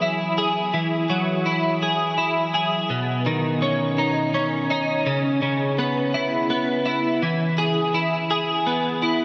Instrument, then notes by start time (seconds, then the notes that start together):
clean electric guitar
Already playing: E3 F#3 B3 G#4
0.02 E4
0.38 G#4
0.74 E3
1.10 F#3
1.46 E4
1.83 G#4
2.18 E4
2.54 G#4
2.90 B2
3.26 D#3
3.62 C#4
3.98 D#4
4.34 C#4
4.70 D#4
5.06 C#3
5.42 C#3
5.79 B3
6.14 E4
6.50 B3
6.86 E4
7.22 E3
7.58 G#4
7.94 E4
8.31 G#4
8.67 B3
9.02 E4